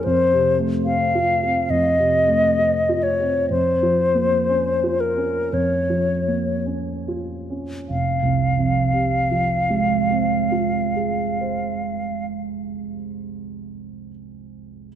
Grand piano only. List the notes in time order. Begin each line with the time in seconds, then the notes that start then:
0.06 F2
0.33 C3
0.59 A3
0.86 C4
1.15 F4
1.43 C4
1.70 F2
1.99 C3
2.28 A3
2.59 C4
2.89 F4
3.20 C4
3.50 F2
3.83 F3
4.15 A#3
4.49 C#4
4.83 F4
5.17 C#4
5.53 F2
5.90 F3
6.28 A#3
6.66 C#4
7.08 F4
7.50 C#4
7.90 F1
8.23 C2
8.59 F2
8.93 C3
9.31 F3
9.70 G#3
10.11 C4
10.52 F4
10.96 G#4
11.41 C5